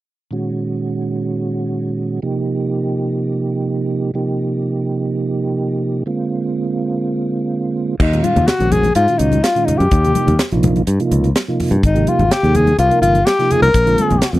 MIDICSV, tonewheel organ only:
0, 0, Header, 1, 2, 480
1, 0, Start_track
1, 0, Tempo, 479233
1, 324, Time_signature, 4, 2, 24, 8
1, 14419, End_track
2, 0, Start_track
2, 0, Title_t, "Tonewheel organ"
2, 0, Program_c, 0, 16
2, 307, Note_on_c, 0, 46, 55
2, 311, Note_on_c, 0, 51, 48
2, 323, Note_on_c, 0, 56, 48
2, 327, Note_on_c, 0, 61, 51
2, 330, Note_on_c, 0, 66, 58
2, 2196, Note_off_c, 0, 46, 0
2, 2198, Note_off_c, 0, 51, 0
2, 2204, Note_off_c, 0, 56, 0
2, 2206, Note_off_c, 0, 61, 0
2, 2208, Note_off_c, 0, 66, 0
2, 2227, Note_on_c, 0, 53, 53
2, 2229, Note_on_c, 0, 58, 50
2, 2230, Note_on_c, 0, 48, 61
2, 2233, Note_on_c, 0, 63, 52
2, 2233, Note_on_c, 0, 67, 65
2, 4118, Note_off_c, 0, 53, 0
2, 4119, Note_off_c, 0, 48, 0
2, 4119, Note_off_c, 0, 58, 0
2, 4121, Note_off_c, 0, 63, 0
2, 4121, Note_off_c, 0, 67, 0
2, 4145, Note_on_c, 0, 48, 62
2, 4147, Note_on_c, 0, 53, 56
2, 4154, Note_on_c, 0, 58, 54
2, 4157, Note_on_c, 0, 63, 55
2, 4158, Note_on_c, 0, 67, 63
2, 6040, Note_off_c, 0, 48, 0
2, 6041, Note_off_c, 0, 53, 0
2, 6044, Note_off_c, 0, 58, 0
2, 6046, Note_off_c, 0, 63, 0
2, 6046, Note_off_c, 0, 67, 0
2, 6069, Note_on_c, 0, 50, 55
2, 6070, Note_on_c, 0, 56, 59
2, 6078, Note_on_c, 0, 58, 55
2, 6079, Note_on_c, 0, 60, 55
2, 6084, Note_on_c, 0, 65, 65
2, 7963, Note_off_c, 0, 50, 0
2, 7964, Note_off_c, 0, 56, 0
2, 7968, Note_off_c, 0, 58, 0
2, 7968, Note_off_c, 0, 60, 0
2, 7971, Note_off_c, 0, 65, 0
2, 8138, Note_on_c, 0, 46, 62
2, 8141, Note_on_c, 0, 51, 59
2, 8145, Note_on_c, 0, 56, 55
2, 8148, Note_on_c, 0, 61, 59
2, 8148, Note_on_c, 0, 65, 65
2, 8436, Note_off_c, 0, 46, 0
2, 8438, Note_off_c, 0, 51, 0
2, 8439, Note_off_c, 0, 56, 0
2, 8441, Note_off_c, 0, 61, 0
2, 8441, Note_off_c, 0, 65, 0
2, 8599, Note_on_c, 0, 46, 64
2, 8607, Note_on_c, 0, 51, 56
2, 8609, Note_on_c, 0, 56, 56
2, 8611, Note_on_c, 0, 66, 66
2, 8613, Note_on_c, 0, 61, 56
2, 8907, Note_off_c, 0, 46, 0
2, 8911, Note_off_c, 0, 51, 0
2, 8911, Note_off_c, 0, 56, 0
2, 8913, Note_off_c, 0, 66, 0
2, 8914, Note_off_c, 0, 61, 0
2, 9109, Note_on_c, 0, 51, 55
2, 9111, Note_on_c, 0, 46, 59
2, 9113, Note_on_c, 0, 61, 50
2, 9119, Note_on_c, 0, 56, 56
2, 9120, Note_on_c, 0, 66, 64
2, 9402, Note_off_c, 0, 51, 0
2, 9403, Note_off_c, 0, 46, 0
2, 9404, Note_off_c, 0, 61, 0
2, 9407, Note_off_c, 0, 56, 0
2, 9407, Note_off_c, 0, 66, 0
2, 9567, Note_on_c, 0, 46, 60
2, 9572, Note_on_c, 0, 51, 60
2, 9573, Note_on_c, 0, 56, 59
2, 9574, Note_on_c, 0, 61, 59
2, 9577, Note_on_c, 0, 65, 73
2, 9871, Note_off_c, 0, 46, 0
2, 9873, Note_off_c, 0, 51, 0
2, 9874, Note_off_c, 0, 56, 0
2, 9874, Note_off_c, 0, 61, 0
2, 9876, Note_off_c, 0, 65, 0
2, 10064, Note_on_c, 0, 53, 56
2, 10064, Note_on_c, 0, 58, 60
2, 10065, Note_on_c, 0, 48, 70
2, 10066, Note_on_c, 0, 67, 72
2, 10071, Note_on_c, 0, 63, 65
2, 10359, Note_off_c, 0, 53, 0
2, 10359, Note_off_c, 0, 58, 0
2, 10360, Note_off_c, 0, 48, 0
2, 10360, Note_off_c, 0, 67, 0
2, 10363, Note_off_c, 0, 63, 0
2, 10537, Note_on_c, 0, 48, 96
2, 10542, Note_on_c, 0, 53, 82
2, 10542, Note_on_c, 0, 65, 101
2, 10545, Note_on_c, 0, 58, 82
2, 10547, Note_on_c, 0, 63, 79
2, 10835, Note_off_c, 0, 48, 0
2, 10838, Note_off_c, 0, 53, 0
2, 10838, Note_off_c, 0, 65, 0
2, 10839, Note_off_c, 0, 58, 0
2, 10840, Note_off_c, 0, 63, 0
2, 11017, Note_on_c, 0, 48, 70
2, 11019, Note_on_c, 0, 53, 71
2, 11020, Note_on_c, 0, 58, 65
2, 11022, Note_on_c, 0, 63, 65
2, 11022, Note_on_c, 0, 65, 78
2, 11315, Note_off_c, 0, 48, 0
2, 11316, Note_off_c, 0, 53, 0
2, 11316, Note_off_c, 0, 58, 0
2, 11317, Note_off_c, 0, 63, 0
2, 11318, Note_off_c, 0, 65, 0
2, 11502, Note_on_c, 0, 48, 72
2, 11502, Note_on_c, 0, 58, 65
2, 11504, Note_on_c, 0, 53, 67
2, 11509, Note_on_c, 0, 65, 78
2, 11512, Note_on_c, 0, 63, 70
2, 11797, Note_off_c, 0, 48, 0
2, 11797, Note_off_c, 0, 58, 0
2, 11798, Note_off_c, 0, 53, 0
2, 11800, Note_off_c, 0, 65, 0
2, 11802, Note_off_c, 0, 63, 0
2, 11964, Note_on_c, 0, 48, 63
2, 11968, Note_on_c, 0, 67, 74
2, 11969, Note_on_c, 0, 53, 57
2, 11971, Note_on_c, 0, 63, 58
2, 11976, Note_on_c, 0, 58, 54
2, 12267, Note_off_c, 0, 48, 0
2, 12270, Note_off_c, 0, 53, 0
2, 12270, Note_off_c, 0, 67, 0
2, 12271, Note_off_c, 0, 63, 0
2, 12274, Note_off_c, 0, 58, 0
2, 12448, Note_on_c, 0, 58, 61
2, 12452, Note_on_c, 0, 53, 59
2, 12453, Note_on_c, 0, 48, 67
2, 12454, Note_on_c, 0, 63, 60
2, 12460, Note_on_c, 0, 68, 71
2, 12749, Note_off_c, 0, 58, 0
2, 12751, Note_off_c, 0, 48, 0
2, 12751, Note_off_c, 0, 53, 0
2, 12752, Note_off_c, 0, 63, 0
2, 12755, Note_off_c, 0, 68, 0
2, 12922, Note_on_c, 0, 48, 63
2, 12929, Note_on_c, 0, 53, 60
2, 12930, Note_on_c, 0, 63, 57
2, 12933, Note_on_c, 0, 58, 52
2, 12933, Note_on_c, 0, 70, 67
2, 13225, Note_off_c, 0, 48, 0
2, 13228, Note_off_c, 0, 53, 0
2, 13229, Note_off_c, 0, 63, 0
2, 13230, Note_off_c, 0, 70, 0
2, 13231, Note_off_c, 0, 58, 0
2, 13409, Note_on_c, 0, 48, 63
2, 13412, Note_on_c, 0, 53, 64
2, 13415, Note_on_c, 0, 58, 61
2, 13420, Note_on_c, 0, 63, 63
2, 13420, Note_on_c, 0, 65, 76
2, 13708, Note_off_c, 0, 48, 0
2, 13709, Note_off_c, 0, 53, 0
2, 13711, Note_off_c, 0, 58, 0
2, 13713, Note_off_c, 0, 63, 0
2, 13713, Note_off_c, 0, 65, 0
2, 13887, Note_on_c, 0, 50, 65
2, 13889, Note_on_c, 0, 58, 65
2, 13889, Note_on_c, 0, 60, 62
2, 13890, Note_on_c, 0, 56, 61
2, 13893, Note_on_c, 0, 65, 76
2, 14185, Note_off_c, 0, 50, 0
2, 14187, Note_off_c, 0, 56, 0
2, 14187, Note_off_c, 0, 58, 0
2, 14187, Note_off_c, 0, 60, 0
2, 14188, Note_off_c, 0, 65, 0
2, 14363, Note_on_c, 0, 50, 88
2, 14363, Note_on_c, 0, 56, 79
2, 14363, Note_on_c, 0, 58, 76
2, 14371, Note_on_c, 0, 60, 84
2, 14375, Note_on_c, 0, 65, 96
2, 14419, Note_off_c, 0, 50, 0
2, 14419, Note_off_c, 0, 56, 0
2, 14419, Note_off_c, 0, 58, 0
2, 14419, Note_off_c, 0, 60, 0
2, 14419, Note_off_c, 0, 65, 0
2, 14419, End_track
0, 0, End_of_file